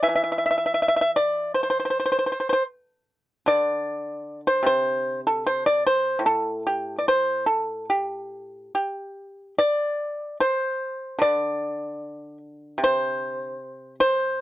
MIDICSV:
0, 0, Header, 1, 2, 480
1, 0, Start_track
1, 0, Tempo, 766284
1, 36, Time_signature, 4, 2, 24, 8
1, 3396, Tempo, 814111
1, 4836, Tempo, 837989
1, 6756, Tempo, 785340
1, 8709, End_track
2, 0, Start_track
2, 0, Title_t, "Pipa"
2, 0, Program_c, 0, 105
2, 17, Note_on_c, 0, 52, 46
2, 20, Note_on_c, 0, 76, 76
2, 46, Note_off_c, 0, 76, 0
2, 54, Note_on_c, 0, 76, 53
2, 90, Note_off_c, 0, 76, 0
2, 97, Note_on_c, 0, 76, 57
2, 140, Note_off_c, 0, 76, 0
2, 148, Note_on_c, 0, 76, 42
2, 192, Note_off_c, 0, 76, 0
2, 200, Note_on_c, 0, 76, 45
2, 231, Note_off_c, 0, 76, 0
2, 239, Note_on_c, 0, 76, 37
2, 279, Note_off_c, 0, 76, 0
2, 287, Note_on_c, 0, 76, 48
2, 310, Note_off_c, 0, 76, 0
2, 317, Note_on_c, 0, 76, 49
2, 354, Note_off_c, 0, 76, 0
2, 362, Note_on_c, 0, 76, 48
2, 405, Note_off_c, 0, 76, 0
2, 413, Note_on_c, 0, 76, 43
2, 457, Note_off_c, 0, 76, 0
2, 465, Note_on_c, 0, 76, 51
2, 507, Note_off_c, 0, 76, 0
2, 515, Note_on_c, 0, 76, 47
2, 546, Note_off_c, 0, 76, 0
2, 553, Note_on_c, 0, 76, 55
2, 596, Note_off_c, 0, 76, 0
2, 604, Note_on_c, 0, 76, 50
2, 627, Note_off_c, 0, 76, 0
2, 634, Note_on_c, 0, 76, 56
2, 689, Note_off_c, 0, 76, 0
2, 727, Note_on_c, 0, 74, 67
2, 963, Note_off_c, 0, 74, 0
2, 967, Note_on_c, 0, 72, 57
2, 1014, Note_off_c, 0, 72, 0
2, 1021, Note_on_c, 0, 72, 39
2, 1057, Note_off_c, 0, 72, 0
2, 1065, Note_on_c, 0, 72, 46
2, 1116, Note_off_c, 0, 72, 0
2, 1125, Note_on_c, 0, 72, 39
2, 1152, Note_off_c, 0, 72, 0
2, 1160, Note_on_c, 0, 72, 41
2, 1184, Note_off_c, 0, 72, 0
2, 1192, Note_on_c, 0, 72, 38
2, 1243, Note_off_c, 0, 72, 0
2, 1250, Note_on_c, 0, 72, 44
2, 1280, Note_off_c, 0, 72, 0
2, 1288, Note_on_c, 0, 72, 38
2, 1320, Note_off_c, 0, 72, 0
2, 1327, Note_on_c, 0, 72, 39
2, 1362, Note_off_c, 0, 72, 0
2, 1370, Note_on_c, 0, 72, 32
2, 1410, Note_off_c, 0, 72, 0
2, 1418, Note_on_c, 0, 72, 41
2, 1445, Note_off_c, 0, 72, 0
2, 1453, Note_on_c, 0, 72, 39
2, 1463, Note_off_c, 0, 52, 0
2, 1496, Note_off_c, 0, 72, 0
2, 1503, Note_on_c, 0, 72, 44
2, 1554, Note_off_c, 0, 72, 0
2, 1561, Note_on_c, 0, 72, 39
2, 1576, Note_off_c, 0, 72, 0
2, 1584, Note_on_c, 0, 72, 54
2, 1642, Note_off_c, 0, 72, 0
2, 2169, Note_on_c, 0, 50, 46
2, 2178, Note_on_c, 0, 74, 80
2, 2756, Note_off_c, 0, 74, 0
2, 2801, Note_on_c, 0, 72, 67
2, 2898, Note_on_c, 0, 48, 49
2, 2906, Note_off_c, 0, 72, 0
2, 2921, Note_on_c, 0, 72, 74
2, 3254, Note_off_c, 0, 72, 0
2, 3300, Note_on_c, 0, 69, 60
2, 3402, Note_off_c, 0, 69, 0
2, 3422, Note_on_c, 0, 72, 73
2, 3519, Note_off_c, 0, 72, 0
2, 3538, Note_on_c, 0, 74, 73
2, 3623, Note_off_c, 0, 50, 0
2, 3636, Note_off_c, 0, 74, 0
2, 3658, Note_on_c, 0, 72, 68
2, 3847, Note_off_c, 0, 48, 0
2, 3849, Note_on_c, 0, 45, 47
2, 3867, Note_off_c, 0, 72, 0
2, 3890, Note_on_c, 0, 69, 72
2, 4103, Note_off_c, 0, 69, 0
2, 4130, Note_on_c, 0, 67, 61
2, 4304, Note_off_c, 0, 67, 0
2, 4318, Note_on_c, 0, 74, 39
2, 4355, Note_off_c, 0, 74, 0
2, 4375, Note_on_c, 0, 72, 64
2, 4588, Note_off_c, 0, 72, 0
2, 4600, Note_on_c, 0, 69, 50
2, 4824, Note_off_c, 0, 69, 0
2, 4855, Note_on_c, 0, 67, 50
2, 5314, Note_off_c, 0, 45, 0
2, 5335, Note_off_c, 0, 67, 0
2, 5342, Note_on_c, 0, 67, 50
2, 5797, Note_off_c, 0, 67, 0
2, 5822, Note_on_c, 0, 74, 90
2, 6269, Note_off_c, 0, 74, 0
2, 6291, Note_on_c, 0, 72, 78
2, 6737, Note_off_c, 0, 72, 0
2, 6739, Note_on_c, 0, 50, 52
2, 6756, Note_on_c, 0, 74, 81
2, 7463, Note_off_c, 0, 74, 0
2, 7711, Note_on_c, 0, 48, 62
2, 7746, Note_on_c, 0, 72, 86
2, 8195, Note_off_c, 0, 50, 0
2, 8425, Note_off_c, 0, 72, 0
2, 8459, Note_on_c, 0, 72, 90
2, 8709, Note_off_c, 0, 48, 0
2, 8709, Note_off_c, 0, 72, 0
2, 8709, End_track
0, 0, End_of_file